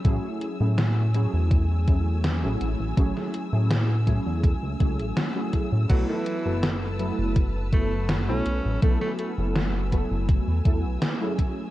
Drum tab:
CC |----------------|----------------|x---------------|----------------|
HH |x-x-x-x-x-x-x-x-|x-x-x-x-x-xxx-x-|x-x-x-x-x-x-x-x-|x-x-x-x-x-x-x-x-|
SD |----o-------o---|-o--o-------o---|----o-------o---|-o--o-------o---|
BD |o-------o-o-----|o-----o-o-o---o-|o-------o-o-----|o-----o-o-o---o-|